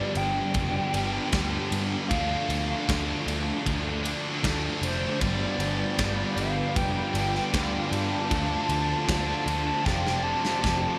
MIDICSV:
0, 0, Header, 1, 8, 480
1, 0, Start_track
1, 0, Tempo, 776197
1, 1300, Time_signature, 4, 2, 24, 8
1, 6794, End_track
2, 0, Start_track
2, 0, Title_t, "Soft synth lead"
2, 0, Program_c, 0, 80
2, 0, Note_on_c, 0, 74, 119
2, 103, Note_on_c, 0, 79, 126
2, 112, Note_off_c, 0, 74, 0
2, 1063, Note_off_c, 0, 79, 0
2, 1287, Note_on_c, 0, 77, 127
2, 1990, Note_off_c, 0, 77, 0
2, 2990, Note_on_c, 0, 72, 93
2, 3215, Note_on_c, 0, 74, 121
2, 3225, Note_off_c, 0, 72, 0
2, 3932, Note_on_c, 0, 77, 108
2, 3942, Note_off_c, 0, 74, 0
2, 4178, Note_on_c, 0, 79, 116
2, 4188, Note_off_c, 0, 77, 0
2, 4890, Note_on_c, 0, 81, 127
2, 4900, Note_off_c, 0, 79, 0
2, 5844, Note_off_c, 0, 81, 0
2, 5848, Note_on_c, 0, 81, 110
2, 6088, Note_on_c, 0, 79, 109
2, 6098, Note_off_c, 0, 81, 0
2, 6325, Note_on_c, 0, 81, 103
2, 6334, Note_off_c, 0, 79, 0
2, 6794, Note_off_c, 0, 81, 0
2, 6794, End_track
3, 0, Start_track
3, 0, Title_t, "Analog synth pad"
3, 0, Program_c, 1, 89
3, 3216, Note_on_c, 1, 65, 89
3, 3216, Note_on_c, 1, 71, 80
3, 3218, Note_on_c, 1, 74, 81
3, 3220, Note_on_c, 1, 79, 99
3, 5116, Note_off_c, 1, 71, 0
3, 5118, Note_off_c, 1, 79, 0
3, 5143, Note_on_c, 1, 72, 82
3, 5143, Note_on_c, 1, 81, 101
3, 6070, Note_off_c, 1, 74, 0
3, 6097, Note_on_c, 1, 74, 68
3, 6794, Note_off_c, 1, 65, 0
3, 6794, Note_off_c, 1, 72, 0
3, 6794, Note_off_c, 1, 74, 0
3, 6794, Note_off_c, 1, 81, 0
3, 6794, End_track
4, 0, Start_track
4, 0, Title_t, "Distorted electric guitar"
4, 0, Program_c, 2, 30
4, 0, Note_on_c, 2, 43, 86
4, 0, Note_on_c, 2, 50, 82
4, 0, Note_on_c, 2, 55, 88
4, 85, Note_off_c, 2, 55, 0
4, 92, Note_on_c, 2, 55, 77
4, 102, Note_off_c, 2, 50, 0
4, 109, Note_on_c, 2, 50, 65
4, 338, Note_off_c, 2, 43, 0
4, 815, Note_on_c, 2, 43, 69
4, 816, Note_off_c, 2, 50, 0
4, 824, Note_on_c, 2, 50, 80
4, 825, Note_off_c, 2, 55, 0
4, 832, Note_on_c, 2, 55, 86
4, 1054, Note_off_c, 2, 55, 0
4, 1061, Note_on_c, 2, 55, 77
4, 1070, Note_off_c, 2, 50, 0
4, 1077, Note_on_c, 2, 50, 62
4, 1284, Note_off_c, 2, 43, 0
4, 1285, Note_off_c, 2, 50, 0
4, 1287, Note_off_c, 2, 55, 0
4, 1293, Note_on_c, 2, 50, 102
4, 1304, Note_on_c, 2, 57, 100
4, 1311, Note_on_c, 2, 62, 106
4, 1535, Note_off_c, 2, 62, 0
4, 1537, Note_on_c, 2, 62, 75
4, 1547, Note_off_c, 2, 57, 0
4, 1554, Note_on_c, 2, 57, 69
4, 1768, Note_off_c, 2, 50, 0
4, 1775, Note_on_c, 2, 50, 75
4, 1777, Note_off_c, 2, 57, 0
4, 1785, Note_on_c, 2, 57, 90
4, 1791, Note_off_c, 2, 62, 0
4, 1794, Note_on_c, 2, 62, 84
4, 2018, Note_off_c, 2, 62, 0
4, 2020, Note_on_c, 2, 62, 81
4, 2031, Note_off_c, 2, 57, 0
4, 2038, Note_on_c, 2, 57, 68
4, 2258, Note_off_c, 2, 50, 0
4, 2733, Note_on_c, 2, 50, 78
4, 2738, Note_off_c, 2, 57, 0
4, 2745, Note_on_c, 2, 57, 85
4, 2750, Note_off_c, 2, 62, 0
4, 2752, Note_on_c, 2, 62, 88
4, 2977, Note_off_c, 2, 62, 0
4, 2980, Note_on_c, 2, 62, 77
4, 2990, Note_off_c, 2, 57, 0
4, 2997, Note_on_c, 2, 57, 68
4, 3202, Note_off_c, 2, 50, 0
4, 3215, Note_off_c, 2, 57, 0
4, 3219, Note_on_c, 2, 43, 96
4, 3227, Note_on_c, 2, 50, 112
4, 3235, Note_on_c, 2, 55, 107
4, 3454, Note_off_c, 2, 55, 0
4, 3461, Note_on_c, 2, 55, 77
4, 3471, Note_off_c, 2, 50, 0
4, 3478, Note_on_c, 2, 50, 65
4, 3693, Note_off_c, 2, 43, 0
4, 3700, Note_on_c, 2, 43, 83
4, 3703, Note_off_c, 2, 50, 0
4, 3709, Note_off_c, 2, 55, 0
4, 3710, Note_on_c, 2, 50, 85
4, 3717, Note_on_c, 2, 55, 88
4, 3932, Note_off_c, 2, 55, 0
4, 3939, Note_on_c, 2, 55, 82
4, 3948, Note_off_c, 2, 50, 0
4, 3955, Note_on_c, 2, 50, 70
4, 4179, Note_off_c, 2, 43, 0
4, 4656, Note_on_c, 2, 43, 76
4, 4658, Note_off_c, 2, 50, 0
4, 4665, Note_off_c, 2, 55, 0
4, 4665, Note_on_c, 2, 50, 80
4, 4673, Note_on_c, 2, 55, 82
4, 4888, Note_off_c, 2, 55, 0
4, 4895, Note_on_c, 2, 55, 79
4, 4904, Note_off_c, 2, 50, 0
4, 4912, Note_on_c, 2, 50, 67
4, 5122, Note_off_c, 2, 43, 0
4, 5122, Note_off_c, 2, 55, 0
4, 5128, Note_off_c, 2, 50, 0
4, 5135, Note_on_c, 2, 50, 93
4, 5144, Note_off_c, 2, 62, 0
4, 5147, Note_on_c, 2, 57, 101
4, 5152, Note_on_c, 2, 62, 104
4, 5368, Note_off_c, 2, 62, 0
4, 5376, Note_on_c, 2, 62, 81
4, 5386, Note_off_c, 2, 57, 0
4, 5393, Note_on_c, 2, 57, 63
4, 5605, Note_off_c, 2, 50, 0
4, 5612, Note_on_c, 2, 50, 78
4, 5615, Note_off_c, 2, 57, 0
4, 5623, Note_on_c, 2, 57, 85
4, 5624, Note_off_c, 2, 62, 0
4, 5631, Note_on_c, 2, 62, 89
4, 5848, Note_off_c, 2, 62, 0
4, 5855, Note_on_c, 2, 62, 80
4, 5866, Note_off_c, 2, 57, 0
4, 5874, Note_on_c, 2, 57, 65
4, 6079, Note_off_c, 2, 50, 0
4, 6081, Note_off_c, 2, 62, 0
4, 6090, Note_off_c, 2, 57, 0
4, 6092, Note_on_c, 2, 41, 97
4, 6103, Note_on_c, 2, 48, 107
4, 6110, Note_on_c, 2, 53, 112
4, 6563, Note_off_c, 2, 41, 0
4, 6570, Note_on_c, 2, 41, 72
4, 6572, Note_off_c, 2, 48, 0
4, 6580, Note_on_c, 2, 48, 83
4, 6581, Note_off_c, 2, 53, 0
4, 6588, Note_on_c, 2, 53, 84
4, 6794, Note_off_c, 2, 41, 0
4, 6794, Note_off_c, 2, 48, 0
4, 6794, Note_off_c, 2, 53, 0
4, 6794, End_track
5, 0, Start_track
5, 0, Title_t, "Overdriven electric guitar"
5, 0, Program_c, 3, 29
5, 0, Note_on_c, 3, 43, 87
5, 0, Note_on_c, 3, 50, 77
5, 0, Note_on_c, 3, 53, 76
5, 0, Note_on_c, 3, 59, 83
5, 0, Note_on_c, 3, 62, 90
5, 94, Note_off_c, 3, 43, 0
5, 331, Note_off_c, 3, 50, 0
5, 333, Note_on_c, 3, 43, 93
5, 338, Note_on_c, 3, 50, 97
5, 340, Note_off_c, 3, 59, 0
5, 341, Note_off_c, 3, 53, 0
5, 344, Note_on_c, 3, 53, 95
5, 348, Note_on_c, 3, 59, 101
5, 349, Note_off_c, 3, 62, 0
5, 351, Note_on_c, 3, 62, 102
5, 572, Note_off_c, 3, 62, 0
5, 574, Note_on_c, 3, 62, 74
5, 575, Note_off_c, 3, 59, 0
5, 582, Note_on_c, 3, 59, 69
5, 589, Note_off_c, 3, 53, 0
5, 591, Note_on_c, 3, 53, 64
5, 805, Note_off_c, 3, 50, 0
5, 812, Note_on_c, 3, 50, 84
5, 817, Note_off_c, 3, 43, 0
5, 817, Note_off_c, 3, 53, 0
5, 820, Note_off_c, 3, 59, 0
5, 820, Note_on_c, 3, 53, 81
5, 827, Note_on_c, 3, 59, 85
5, 829, Note_off_c, 3, 62, 0
5, 831, Note_on_c, 3, 62, 84
5, 1282, Note_off_c, 3, 50, 0
5, 1290, Note_off_c, 3, 59, 0
5, 1297, Note_on_c, 3, 50, 99
5, 1304, Note_off_c, 3, 53, 0
5, 1306, Note_on_c, 3, 53, 102
5, 1311, Note_on_c, 3, 57, 104
5, 1313, Note_off_c, 3, 62, 0
5, 1315, Note_on_c, 3, 62, 113
5, 1769, Note_off_c, 3, 50, 0
5, 1776, Note_on_c, 3, 50, 84
5, 1779, Note_off_c, 3, 53, 0
5, 1782, Note_off_c, 3, 57, 0
5, 1782, Note_on_c, 3, 53, 79
5, 1789, Note_on_c, 3, 57, 80
5, 1791, Note_off_c, 3, 62, 0
5, 1793, Note_on_c, 3, 62, 90
5, 2245, Note_off_c, 3, 50, 0
5, 2253, Note_on_c, 3, 50, 91
5, 2258, Note_off_c, 3, 53, 0
5, 2259, Note_off_c, 3, 57, 0
5, 2260, Note_on_c, 3, 53, 102
5, 2267, Note_on_c, 3, 57, 112
5, 2270, Note_off_c, 3, 62, 0
5, 2272, Note_on_c, 3, 62, 119
5, 2492, Note_off_c, 3, 62, 0
5, 2495, Note_on_c, 3, 62, 78
5, 2497, Note_off_c, 3, 57, 0
5, 2504, Note_on_c, 3, 57, 76
5, 2509, Note_off_c, 3, 53, 0
5, 2512, Note_on_c, 3, 53, 64
5, 2721, Note_off_c, 3, 50, 0
5, 2728, Note_on_c, 3, 50, 72
5, 2734, Note_off_c, 3, 53, 0
5, 2735, Note_off_c, 3, 57, 0
5, 2736, Note_on_c, 3, 53, 77
5, 2742, Note_on_c, 3, 57, 82
5, 2746, Note_off_c, 3, 62, 0
5, 2749, Note_on_c, 3, 62, 94
5, 3200, Note_off_c, 3, 50, 0
5, 3207, Note_off_c, 3, 57, 0
5, 3212, Note_on_c, 3, 43, 93
5, 3217, Note_on_c, 3, 50, 102
5, 3219, Note_off_c, 3, 53, 0
5, 3222, Note_on_c, 3, 53, 98
5, 3225, Note_on_c, 3, 59, 106
5, 3227, Note_off_c, 3, 62, 0
5, 3229, Note_on_c, 3, 62, 109
5, 3680, Note_off_c, 3, 50, 0
5, 3688, Note_on_c, 3, 50, 75
5, 3694, Note_off_c, 3, 53, 0
5, 3696, Note_off_c, 3, 59, 0
5, 3697, Note_on_c, 3, 53, 78
5, 3703, Note_on_c, 3, 59, 86
5, 3704, Note_off_c, 3, 62, 0
5, 3707, Note_on_c, 3, 62, 92
5, 3935, Note_off_c, 3, 43, 0
5, 4167, Note_off_c, 3, 50, 0
5, 4167, Note_on_c, 3, 43, 93
5, 4175, Note_on_c, 3, 50, 93
5, 4177, Note_off_c, 3, 53, 0
5, 4177, Note_off_c, 3, 59, 0
5, 4179, Note_on_c, 3, 53, 114
5, 4183, Note_off_c, 3, 62, 0
5, 4184, Note_on_c, 3, 59, 106
5, 4185, Note_on_c, 3, 62, 100
5, 4405, Note_off_c, 3, 62, 0
5, 4407, Note_on_c, 3, 62, 83
5, 4408, Note_off_c, 3, 59, 0
5, 4415, Note_on_c, 3, 59, 70
5, 4423, Note_off_c, 3, 53, 0
5, 4425, Note_on_c, 3, 53, 70
5, 4639, Note_off_c, 3, 50, 0
5, 4646, Note_on_c, 3, 50, 81
5, 4651, Note_off_c, 3, 53, 0
5, 4652, Note_off_c, 3, 43, 0
5, 4652, Note_off_c, 3, 59, 0
5, 4653, Note_on_c, 3, 53, 84
5, 4659, Note_on_c, 3, 59, 85
5, 4660, Note_off_c, 3, 62, 0
5, 4663, Note_on_c, 3, 62, 89
5, 5117, Note_off_c, 3, 50, 0
5, 5123, Note_off_c, 3, 59, 0
5, 5128, Note_on_c, 3, 50, 95
5, 5133, Note_off_c, 3, 53, 0
5, 5135, Note_on_c, 3, 53, 108
5, 5142, Note_on_c, 3, 57, 103
5, 5145, Note_off_c, 3, 62, 0
5, 5148, Note_on_c, 3, 62, 111
5, 5603, Note_off_c, 3, 50, 0
5, 5611, Note_off_c, 3, 53, 0
5, 5611, Note_on_c, 3, 50, 78
5, 5616, Note_off_c, 3, 57, 0
5, 5619, Note_on_c, 3, 53, 73
5, 5622, Note_off_c, 3, 62, 0
5, 5623, Note_on_c, 3, 57, 78
5, 5629, Note_on_c, 3, 62, 90
5, 6078, Note_off_c, 3, 50, 0
5, 6082, Note_off_c, 3, 53, 0
5, 6085, Note_off_c, 3, 57, 0
5, 6085, Note_on_c, 3, 41, 92
5, 6088, Note_off_c, 3, 62, 0
5, 6091, Note_on_c, 3, 48, 95
5, 6097, Note_on_c, 3, 53, 95
5, 6099, Note_on_c, 3, 57, 96
5, 6103, Note_on_c, 3, 60, 102
5, 6321, Note_off_c, 3, 60, 0
5, 6328, Note_on_c, 3, 60, 71
5, 6329, Note_off_c, 3, 57, 0
5, 6336, Note_on_c, 3, 57, 73
5, 6339, Note_off_c, 3, 53, 0
5, 6346, Note_on_c, 3, 53, 66
5, 6562, Note_off_c, 3, 48, 0
5, 6567, Note_off_c, 3, 53, 0
5, 6570, Note_off_c, 3, 41, 0
5, 6570, Note_on_c, 3, 48, 79
5, 6575, Note_on_c, 3, 53, 83
5, 6576, Note_off_c, 3, 57, 0
5, 6579, Note_off_c, 3, 60, 0
5, 6583, Note_on_c, 3, 57, 79
5, 6587, Note_on_c, 3, 60, 82
5, 6794, Note_off_c, 3, 48, 0
5, 6794, Note_off_c, 3, 53, 0
5, 6794, Note_off_c, 3, 57, 0
5, 6794, Note_off_c, 3, 60, 0
5, 6794, End_track
6, 0, Start_track
6, 0, Title_t, "Overdriven electric guitar"
6, 0, Program_c, 4, 29
6, 0, Note_on_c, 4, 50, 109
6, 0, Note_on_c, 4, 55, 103
6, 565, Note_off_c, 4, 50, 0
6, 566, Note_off_c, 4, 55, 0
6, 573, Note_on_c, 4, 55, 86
6, 580, Note_on_c, 4, 50, 80
6, 591, Note_on_c, 4, 43, 75
6, 802, Note_off_c, 4, 55, 0
6, 805, Note_off_c, 4, 43, 0
6, 806, Note_off_c, 4, 50, 0
6, 813, Note_on_c, 4, 43, 85
6, 830, Note_on_c, 4, 55, 95
6, 1283, Note_off_c, 4, 43, 0
6, 1291, Note_off_c, 4, 55, 0
6, 2515, Note_on_c, 4, 50, 70
6, 2725, Note_off_c, 4, 50, 0
6, 3229, Note_on_c, 4, 55, 116
6, 4403, Note_off_c, 4, 55, 0
6, 4411, Note_on_c, 4, 55, 87
6, 4419, Note_on_c, 4, 50, 82
6, 4426, Note_on_c, 4, 43, 75
6, 4637, Note_off_c, 4, 43, 0
6, 4640, Note_off_c, 4, 55, 0
6, 4644, Note_off_c, 4, 50, 0
6, 4644, Note_on_c, 4, 43, 78
6, 4664, Note_on_c, 4, 55, 88
6, 5116, Note_off_c, 4, 43, 0
6, 5126, Note_off_c, 4, 55, 0
6, 6794, End_track
7, 0, Start_track
7, 0, Title_t, "Picked electric bass"
7, 0, Program_c, 5, 34
7, 97, Note_on_c, 5, 31, 99
7, 243, Note_off_c, 5, 31, 0
7, 335, Note_on_c, 5, 29, 99
7, 482, Note_off_c, 5, 29, 0
7, 579, Note_on_c, 5, 31, 94
7, 725, Note_off_c, 5, 31, 0
7, 821, Note_on_c, 5, 38, 92
7, 967, Note_off_c, 5, 38, 0
7, 1060, Note_on_c, 5, 43, 91
7, 1206, Note_off_c, 5, 43, 0
7, 1302, Note_on_c, 5, 38, 99
7, 1448, Note_off_c, 5, 38, 0
7, 1539, Note_on_c, 5, 38, 93
7, 1686, Note_off_c, 5, 38, 0
7, 1787, Note_on_c, 5, 38, 95
7, 1931, Note_off_c, 5, 38, 0
7, 2019, Note_on_c, 5, 38, 93
7, 2165, Note_off_c, 5, 38, 0
7, 2262, Note_on_c, 5, 38, 99
7, 2554, Note_off_c, 5, 38, 0
7, 2743, Note_on_c, 5, 38, 90
7, 2888, Note_off_c, 5, 38, 0
7, 2978, Note_on_c, 5, 29, 87
7, 3125, Note_off_c, 5, 29, 0
7, 3221, Note_on_c, 5, 31, 96
7, 3367, Note_off_c, 5, 31, 0
7, 3455, Note_on_c, 5, 31, 99
7, 3602, Note_off_c, 5, 31, 0
7, 3701, Note_on_c, 5, 31, 101
7, 3846, Note_off_c, 5, 31, 0
7, 3936, Note_on_c, 5, 31, 101
7, 4083, Note_off_c, 5, 31, 0
7, 4182, Note_on_c, 5, 29, 93
7, 4327, Note_off_c, 5, 29, 0
7, 4416, Note_on_c, 5, 31, 94
7, 4563, Note_off_c, 5, 31, 0
7, 4660, Note_on_c, 5, 38, 90
7, 4805, Note_off_c, 5, 38, 0
7, 4894, Note_on_c, 5, 43, 84
7, 5041, Note_off_c, 5, 43, 0
7, 5139, Note_on_c, 5, 38, 102
7, 5284, Note_off_c, 5, 38, 0
7, 5375, Note_on_c, 5, 38, 92
7, 5521, Note_off_c, 5, 38, 0
7, 5617, Note_on_c, 5, 38, 95
7, 5762, Note_off_c, 5, 38, 0
7, 5851, Note_on_c, 5, 38, 95
7, 5998, Note_off_c, 5, 38, 0
7, 6098, Note_on_c, 5, 29, 99
7, 6389, Note_off_c, 5, 29, 0
7, 6575, Note_on_c, 5, 29, 90
7, 6721, Note_off_c, 5, 29, 0
7, 6794, End_track
8, 0, Start_track
8, 0, Title_t, "Drums"
8, 95, Note_on_c, 9, 51, 74
8, 157, Note_off_c, 9, 51, 0
8, 335, Note_on_c, 9, 51, 102
8, 339, Note_on_c, 9, 36, 113
8, 397, Note_off_c, 9, 51, 0
8, 401, Note_off_c, 9, 36, 0
8, 581, Note_on_c, 9, 51, 80
8, 643, Note_off_c, 9, 51, 0
8, 819, Note_on_c, 9, 51, 108
8, 821, Note_on_c, 9, 36, 117
8, 823, Note_on_c, 9, 38, 127
8, 881, Note_off_c, 9, 51, 0
8, 883, Note_off_c, 9, 36, 0
8, 885, Note_off_c, 9, 38, 0
8, 1064, Note_on_c, 9, 51, 85
8, 1126, Note_off_c, 9, 51, 0
8, 1303, Note_on_c, 9, 51, 112
8, 1304, Note_on_c, 9, 36, 118
8, 1365, Note_off_c, 9, 51, 0
8, 1366, Note_off_c, 9, 36, 0
8, 1545, Note_on_c, 9, 51, 83
8, 1607, Note_off_c, 9, 51, 0
8, 1786, Note_on_c, 9, 36, 114
8, 1788, Note_on_c, 9, 51, 113
8, 1792, Note_on_c, 9, 38, 120
8, 1848, Note_off_c, 9, 36, 0
8, 1850, Note_off_c, 9, 51, 0
8, 1853, Note_off_c, 9, 38, 0
8, 2029, Note_on_c, 9, 51, 84
8, 2091, Note_off_c, 9, 51, 0
8, 2266, Note_on_c, 9, 36, 109
8, 2267, Note_on_c, 9, 51, 108
8, 2328, Note_off_c, 9, 36, 0
8, 2328, Note_off_c, 9, 51, 0
8, 2507, Note_on_c, 9, 51, 91
8, 2569, Note_off_c, 9, 51, 0
8, 2747, Note_on_c, 9, 36, 127
8, 2748, Note_on_c, 9, 51, 127
8, 2752, Note_on_c, 9, 38, 127
8, 2809, Note_off_c, 9, 36, 0
8, 2810, Note_off_c, 9, 51, 0
8, 2814, Note_off_c, 9, 38, 0
8, 2987, Note_on_c, 9, 51, 86
8, 3049, Note_off_c, 9, 51, 0
8, 3223, Note_on_c, 9, 51, 114
8, 3224, Note_on_c, 9, 36, 114
8, 3285, Note_off_c, 9, 51, 0
8, 3286, Note_off_c, 9, 36, 0
8, 3463, Note_on_c, 9, 51, 84
8, 3525, Note_off_c, 9, 51, 0
8, 3701, Note_on_c, 9, 51, 110
8, 3703, Note_on_c, 9, 36, 119
8, 3705, Note_on_c, 9, 38, 123
8, 3763, Note_off_c, 9, 51, 0
8, 3765, Note_off_c, 9, 36, 0
8, 3767, Note_off_c, 9, 38, 0
8, 3942, Note_on_c, 9, 51, 76
8, 4004, Note_off_c, 9, 51, 0
8, 4182, Note_on_c, 9, 36, 116
8, 4182, Note_on_c, 9, 51, 103
8, 4244, Note_off_c, 9, 36, 0
8, 4244, Note_off_c, 9, 51, 0
8, 4421, Note_on_c, 9, 51, 85
8, 4483, Note_off_c, 9, 51, 0
8, 4546, Note_on_c, 9, 38, 35
8, 4608, Note_off_c, 9, 38, 0
8, 4661, Note_on_c, 9, 36, 122
8, 4661, Note_on_c, 9, 51, 110
8, 4665, Note_on_c, 9, 38, 126
8, 4723, Note_off_c, 9, 36, 0
8, 4723, Note_off_c, 9, 51, 0
8, 4727, Note_off_c, 9, 38, 0
8, 4902, Note_on_c, 9, 51, 80
8, 4964, Note_off_c, 9, 51, 0
8, 5140, Note_on_c, 9, 36, 113
8, 5140, Note_on_c, 9, 51, 101
8, 5202, Note_off_c, 9, 36, 0
8, 5202, Note_off_c, 9, 51, 0
8, 5377, Note_on_c, 9, 51, 83
8, 5438, Note_off_c, 9, 51, 0
8, 5619, Note_on_c, 9, 36, 118
8, 5619, Note_on_c, 9, 51, 109
8, 5623, Note_on_c, 9, 38, 123
8, 5680, Note_off_c, 9, 36, 0
8, 5681, Note_off_c, 9, 51, 0
8, 5685, Note_off_c, 9, 38, 0
8, 5861, Note_on_c, 9, 51, 83
8, 5922, Note_off_c, 9, 51, 0
8, 6099, Note_on_c, 9, 36, 111
8, 6105, Note_on_c, 9, 38, 65
8, 6161, Note_off_c, 9, 36, 0
8, 6167, Note_off_c, 9, 38, 0
8, 6224, Note_on_c, 9, 38, 65
8, 6286, Note_off_c, 9, 38, 0
8, 6461, Note_on_c, 9, 38, 77
8, 6523, Note_off_c, 9, 38, 0
8, 6579, Note_on_c, 9, 36, 120
8, 6584, Note_on_c, 9, 38, 100
8, 6640, Note_off_c, 9, 36, 0
8, 6646, Note_off_c, 9, 38, 0
8, 6794, End_track
0, 0, End_of_file